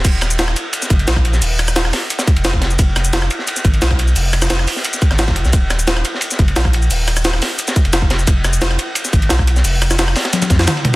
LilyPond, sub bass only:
\new Staff \with { instrumentName = "Sub bass" } { \clef bass \time 4/4 \key ees \minor \tempo 4 = 175 ees,,4. r4 ges,,8 bes,,4 | ees,,4. r4 r16 f,,4~ f,,16 | f,,4. r4 aes,,8 ces,4 | f,,4. r4 r16 aes,,8. f,,16 ces,16 |
ees,,4. r4 ges,,8 bes,,4 | ees,,4. r4 r16 f,,4~ f,,16 | f,,4. r4 aes,,8 ces,4 | f,,4. r4 f,8 r4 | }